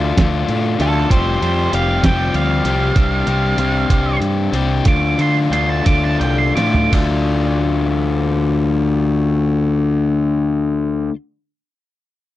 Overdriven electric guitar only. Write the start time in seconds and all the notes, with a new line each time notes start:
Already playing: D3 A3 D4 F4
0.17 D3 A3 D4 F4
0.79 D3 A3 D4 F4
1.09 F3 G3 C4 G4
1.41 F3 G3 C4 G4
1.71 F3 G3 C4 G4
2.03 F3 G3 C4 G4
2.65 F3 G3 C4 G4
2.96 C3 G3 C4 D4 G4
3.27 C3 G3 C4 D4 G4
3.58 C3 G3 C4 D4 G4
3.89 C3 G3 C4 D4 G4
4.52 C3 G3 C4 D4 G4
4.86 D3 A3 D4 F4
5.19 D3 A3 D4 F4
5.52 D3 A3 D4 F4
5.85 D3 A3 D4 F4
6.56 D3 A3 D4 F4
6.91 D3 A3 D4
6.95 F4